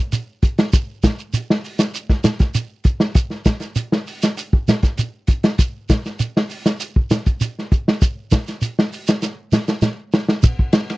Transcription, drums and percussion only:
0.12 closed hi-hat, shekere
0.43 kick, closed hi-hat, shekere
0.58 snare, closed hi-hat
0.73 kick, closed hi-hat, shekere
1.03 kick, snare, closed hi-hat, shekere
1.19 shekere
1.34 closed hi-hat, shekere
1.50 snare
1.64 open hi-hat, shekere
1.79 snare, closed hi-hat, shekere
1.94 closed hi-hat, shekere
2.09 kick, snare
2.24 snare, closed hi-hat, shekere
2.39 kick, snare, closed hi-hat, shekere
2.54 closed hi-hat, shekere
2.84 kick, closed hi-hat, shekere
3.00 snare
3.15 kick, closed hi-hat, shekere
3.30 snare
3.45 kick, snare, closed hi-hat, shekere
3.60 snare, closed hi-hat, shekere
3.76 closed hi-hat, shekere
3.92 snare
4.07 open hi-hat, shekere
4.22 snare, closed hi-hat, shekere
4.37 closed hi-hat, shekere
4.53 kick
4.68 snare, closed hi-hat, shekere
4.82 kick, snare, closed hi-hat, shekere
4.98 closed hi-hat, shekere
5.27 kick, closed hi-hat, shekere
5.43 snare, closed hi-hat
5.58 kick, closed hi-hat, shekere
5.89 kick, snare, closed hi-hat, shekere
6.05 snare, shekere
6.19 closed hi-hat, shekere
6.37 snare
6.50 open hi-hat, shekere
6.65 snare, closed hi-hat, shekere
6.80 closed hi-hat, shekere
6.96 kick
7.11 snare, closed hi-hat, shekere
7.26 kick, closed hi-hat, shekere
7.41 closed hi-hat, shekere
7.59 snare
7.72 kick, closed hi-hat, shekere
7.88 snare
8.02 kick, closed hi-hat, shekere
8.32 kick, snare, closed hi-hat, shekere
8.47 snare, closed hi-hat, shekere
8.62 closed hi-hat, shekere
8.79 snare
8.93 open hi-hat, shekere
9.08 snare, closed hi-hat, shekere
9.22 snare, shekere
9.52 snare, shekere
9.68 snare, shekere
9.82 snare, shekere
10.13 snare, shekere
10.29 snare
10.43 kick, ride bell, shekere
10.59 kick
10.73 snare, ride bell, shekere
10.90 snare, ride bell

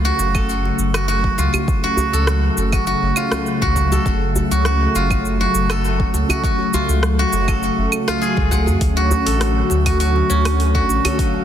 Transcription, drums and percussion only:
0.19 djembe slap, cabasa
0.35 kick, cabasa, claves
0.49 cabasa
0.65 djembe slap
0.79 cabasa
0.94 cross-stick, cabasa, claves
1.09 cabasa
1.24 kick
1.38 djembe slap, cabasa
1.54 djembe tone, djembe bass, cabasa, claves
1.68 kick, cabasa
1.84 djembe tone
1.97 djembe bass, cabasa
2.14 cabasa
2.27 cross-stick, cabasa
2.57 djembe slap, cabasa
2.72 kick, cabasa, claves
2.87 cabasa
3.16 djembe slap, cabasa, claves
3.32 cross-stick, djembe tone, cabasa
3.46 cabasa
3.62 kick, djembe slap
3.76 kick, djembe slap, cabasa
3.92 djembe tone, djembe bass, cabasa
4.06 kick, cabasa
4.36 djembe bass, cabasa
4.51 cabasa
4.65 cross-stick, cabasa
4.95 djembe slap, cabasa
5.11 kick, cabasa, claves
5.25 cabasa
5.41 djembe slap
5.55 cabasa
5.70 cross-stick, cabasa, claves
5.85 cabasa
6.00 kick
6.14 djembe slap, cabasa
6.29 djembe tone, djembe bass, cabasa, claves
6.44 kick, cabasa
6.59 djembe tone
6.74 djembe bass, cabasa
6.89 cabasa
7.03 cross-stick, cabasa
7.33 djembe slap, cabasa
7.48 kick, cabasa, claves
7.63 cabasa
7.92 djembe slap, cabasa, claves
8.08 cross-stick, djembe tone, cabasa
8.22 cabasa
8.37 kick, djembe slap
8.51 kick, djembe slap, cabasa
8.67 djembe tone, djembe bass, cabasa
8.81 kick, open hi-hat, cabasa
9.11 djembe bass, cabasa
9.27 open hi-hat, cabasa
9.41 cross-stick, open hi-hat, cabasa
9.70 djembe slap, cabasa
9.86 kick, open hi-hat, cabasa, claves
10.00 open hi-hat, cabasa
10.16 djembe slap
10.30 cabasa
10.45 cross-stick, open hi-hat, cabasa, claves
10.60 open hi-hat, cabasa
10.75 kick
10.89 djembe slap, cabasa
11.05 open hi-hat, djembe tone, djembe bass, cabasa, claves
11.19 kick, open hi-hat, cabasa
11.34 djembe tone

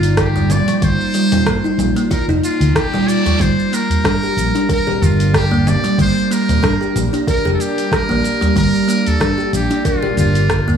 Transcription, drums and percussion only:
0.03 open hi-hat, shaker
0.17 kick, cross-stick, open hi-hat, shaker
0.36 udu, shaker
0.50 open hi-hat, low conga, shaker
0.68 open hi-hat, shaker
0.82 kick, open hi-hat, shaker
1.00 shaker
1.14 open hi-hat, shaker
1.32 open hi-hat, low conga, udu, shaker
1.46 kick, cross-stick, open hi-hat, shaker
1.65 shaker
1.79 open hi-hat, low conga, shaker
1.96 open hi-hat, shaker
2.11 kick, open hi-hat, shaker
2.30 shaker
2.43 open hi-hat, shaker
2.61 open hi-hat, shaker
2.75 kick, cross-stick, open hi-hat, shaker
2.94 low conga, shaker
3.08 open hi-hat, shaker
3.26 open hi-hat, udu, shaker
3.40 kick, open hi-hat, shaker
3.59 shaker
3.73 open hi-hat, shaker
3.90 open hi-hat, udu, shaker
4.04 kick, cross-stick, open hi-hat, shaker
4.24 shaker
4.38 open hi-hat, shaker
4.56 open hi-hat, shaker
4.69 kick, open hi-hat, shaker
4.88 low conga
5.01 open hi-hat, udu, shaker
5.20 open hi-hat, shaker
5.34 kick, cross-stick, open hi-hat, shaker
5.53 udu, shaker
5.67 open hi-hat, low conga, shaker
5.84 open hi-hat, shaker
5.98 kick, open hi-hat, shaker
6.18 shaker
6.31 open hi-hat, shaker
6.49 open hi-hat, udu, low conga, shaker
6.63 kick, cross-stick, open hi-hat, shaker
6.82 shaker
6.96 open hi-hat, low conga, shaker
7.14 open hi-hat, shaker
7.27 kick, open hi-hat, shaker
7.47 shaker
7.60 open hi-hat, shaker
7.78 open hi-hat, shaker
7.92 kick, cross-stick, open hi-hat, shaker
8.10 low conga, shaker
8.24 open hi-hat, shaker
8.42 open hi-hat, udu, shaker
8.56 kick, open hi-hat, shaker
8.75 shaker
8.89 open hi-hat, shaker
9.06 open hi-hat, udu, shaker
9.21 kick, cross-stick, open hi-hat, shaker
9.39 shaker
9.53 open hi-hat, shaker
9.71 open hi-hat, shaker
9.85 kick, open hi-hat, shaker
10.03 low conga
10.17 open hi-hat, udu, shaker
10.35 open hi-hat, shaker
10.50 kick, cross-stick, open hi-hat, shaker
10.67 udu, shaker

